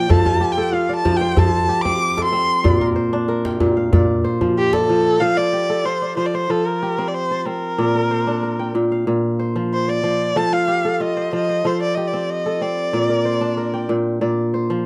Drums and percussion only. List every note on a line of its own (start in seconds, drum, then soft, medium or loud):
0.10 djembe slap soft
0.10 djembe bass medium
0.26 djembe tone medium
1.05 djembe slap soft
1.05 djembe tone medium
1.22 djembe slap soft
1.37 djembe bass medium
1.69 djembe slap soft
1.85 djembe tone medium
2.01 djembe slap soft
2.18 djembe slap medium
2.65 djembe bass medium
2.81 djembe tone medium
3.29 djembe slap soft
3.45 djembe slap medium
3.60 djembe tone medium
3.93 djembe slap soft
3.93 djembe bass medium
4.25 djembe slap soft
4.41 djembe tone medium
4.57 djembe slap soft
4.73 djembe slap medium
5.05 djembe slap soft